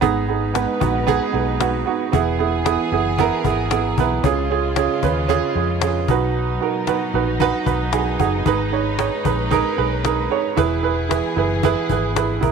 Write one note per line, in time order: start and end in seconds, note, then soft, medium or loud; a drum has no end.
0.01 0.65 G#1 medium
0.01 0.77 G#2 medium
0.01 2.11 G#3 medium
0.01 0.26 B3 loud
0.01 2.11 D#4 medium
0.01 0.27 D#4 medium
0.01 0.27 G#4 loud
0.01 2.10 B4 medium
0.01 cajon bass loud
0.28 0.52 B3 medium
0.28 0.53 D#4 medium
0.28 0.54 G#4 medium
0.54 0.79 B3 medium
0.54 0.79 D#4 medium
0.54 0.80 B4 medium
0.54 cajon slap medium
0.80 1.18 A#1 medium
0.80 1.05 B3 medium
0.80 1.06 D#4 medium
0.80 1.06 F#4 medium
0.80 cajon bass loud
1.07 1.31 B3 loud
1.07 1.32 D#4 medium
1.07 1.33 G#4 loud
1.07 cajon bass medium
1.33 1.83 B1 medium
1.33 1.58 B3 medium
1.33 1.59 D#4 medium
1.33 1.59 G#4 medium
1.59 1.84 B3 medium
1.59 1.85 D#4 medium
1.59 1.85 F#4 medium
1.59 cajon slap loud
1.85 2.11 B3 medium
1.85 2.11 D#4 medium
1.85 2.12 F#4 loud
2.12 2.76 E1 medium
2.12 2.88 E3 medium
2.12 4.22 E3 medium
2.12 2.37 B3 medium
2.12 4.22 B3 medium
2.12 2.38 E4 medium
2.12 4.22 G#4 medium
2.12 2.38 G#4 loud
2.12 cajon bass loud
2.39 2.63 B3 medium
2.39 2.64 E4 medium
2.39 2.65 G#4 loud
2.65 2.90 B3 medium
2.65 2.90 E4 medium
2.65 2.91 G#4 medium
2.65 cajon slap loud
2.92 3.29 F#1 medium
2.92 3.17 B3 medium
2.92 3.17 E4 medium
2.92 3.18 G#4 medium
3.19 3.42 B3 loud
3.19 3.43 E4 loud
3.19 3.44 A#4 loud
3.19 cajon bass medium
3.44 3.94 G#1 medium
3.44 3.69 B3 medium
3.44 3.70 E4 medium
3.44 3.70 G#4 medium
3.44 cajon bass loud
3.71 3.96 B3 medium
3.71 3.96 E4 medium
3.71 3.97 G#4 medium
3.71 cajon slap loud
3.97 4.22 B1 medium
3.97 4.23 B3 medium
3.97 4.23 E4 medium
3.97 4.24 B4 loud
3.97 cajon bass loud
4.23 4.87 C#2 loud
4.23 6.06 C#3 medium
4.23 4.99 C#3 medium
4.23 6.06 G#3 medium
4.23 4.48 C#4 medium
4.23 6.06 F4 medium
4.23 4.49 F4 medium
4.23 4.49 G#4 loud
4.23 cajon bass loud
4.50 4.75 C#4 medium
4.50 4.75 F4 medium
4.50 4.76 G#4 loud
4.76 5.01 C#4 medium
4.76 5.02 F4 medium
4.76 5.02 G#4 loud
4.76 cajon slap loud
5.03 5.40 D#2 medium
5.03 5.27 C#4 medium
5.03 5.28 F4 medium
5.03 5.28 B4 medium
5.03 cajon bass loud
5.28 5.54 C#4 loud
5.28 5.54 F4 loud
5.28 5.54 G#4 loud
5.28 cajon bass medium
5.55 6.05 F2 medium
5.55 5.80 C#4 medium
5.55 5.81 F4 medium
5.55 5.81 G#4 medium
5.81 6.07 C#4 medium
5.81 6.07 F4 medium
5.81 6.08 G#4 medium
5.81 cajon slap loud
6.08 6.57 B1 medium
6.08 6.84 B2 medium
6.08 8.43 F#3 medium
6.08 8.43 B3 medium
6.08 6.58 D#4 loud
6.08 10.53 D#4 medium
6.08 6.59 F#4 medium
6.08 6.59 B4 medium
6.08 cajon bass loud
6.61 6.85 D#4 medium
6.61 6.86 F#4 medium
6.61 6.87 A#4 medium
6.87 7.12 D#4 medium
6.87 7.13 F#4 medium
6.87 7.13 B4 medium
6.87 cajon slap loud
7.14 7.51 A#1 medium
7.14 7.39 D#4 medium
7.14 7.39 F#4 medium
7.14 7.39 B4 medium
7.40 7.64 D#4 loud
7.40 7.65 F#4 loud
7.40 7.65 B4 loud
7.40 cajon bass medium
7.66 8.16 B1 medium
7.66 7.91 D#4 medium
7.66 7.91 F#4 medium
7.66 7.92 B4 medium
7.66 7.91 B5 medium
7.66 cajon bass medium
7.92 8.17 D#4 medium
7.92 8.18 F#4 medium
7.92 8.18 G#4 medium
7.92 8.18 G#5 medium
7.92 cajon slap loud
8.19 8.44 F#1 medium
8.19 8.44 D#4 medium
8.19 8.45 F#4 medium
8.19 8.45 G#4 medium
8.19 8.44 F#5 medium
8.19 cajon bass loud
8.46 9.09 G#1 medium
8.46 9.21 G#2 medium
8.46 10.55 G#3 medium
8.46 8.70 D#4 loud
8.46 8.71 G#4 medium
8.46 10.55 B4 medium
8.46 8.72 B4 loud
8.46 cajon bass loud
8.72 8.96 D#4 medium
8.72 8.97 G#4 medium
8.72 8.98 C#5 medium
8.98 9.23 D#4 medium
8.98 9.23 G#4 medium
8.98 9.24 C#5 medium
8.98 cajon slap loud
9.25 9.62 A#1 medium
9.25 9.49 D#4 medium
9.25 9.50 G#4 medium
9.25 9.50 B4 loud
9.25 cajon bass medium
9.50 9.75 D#4 loud
9.50 9.76 G#4 loud
9.50 9.77 A#4 loud
9.50 cajon bass medium
9.77 10.27 B1 medium
9.77 10.02 D#4 medium
9.77 10.03 G#4 medium
9.77 10.03 B4 loud
10.03 10.28 D#4 medium
10.03 10.29 G#4 medium
10.03 10.30 A#4 medium
10.03 cajon slap loud
10.30 10.55 D#4 medium
10.30 10.56 G#4 medium
10.30 10.56 C#5 medium
10.57 11.20 E1 medium
10.57 11.32 E3 medium
10.57 12.52 E3 medium
10.57 12.52 B3 medium
10.57 10.81 E4 loud
10.57 10.82 G#4 medium
10.57 12.52 G#4 medium
10.57 10.82 B4 loud
10.57 cajon bass loud
10.83 11.07 E4 medium
10.83 11.08 G#4 medium
10.83 11.09 B4 loud
11.09 11.34 E4 medium
11.09 11.35 G#4 medium
11.09 11.35 B4 medium
11.09 cajon slap loud
11.36 11.73 F#1 loud
11.36 11.61 E4 medium
11.36 11.62 G#4 medium
11.36 11.62 B4 medium
11.63 11.88 E4 loud
11.63 11.88 G#4 loud
11.63 11.89 B4 loud
11.63 cajon bass medium
11.89 12.38 G#1 medium
11.89 12.14 E4 medium
11.89 12.15 G#4 medium
11.89 12.15 B4 medium
11.89 cajon bass medium
12.16 12.39 E4 medium
12.16 12.40 G#4 medium
12.16 12.41 B4 medium
12.16 cajon slap loud
12.41 12.52 B1 medium
12.41 12.52 E4 medium
12.41 12.52 G#4 medium
12.41 12.52 A#4 medium
12.41 cajon bass medium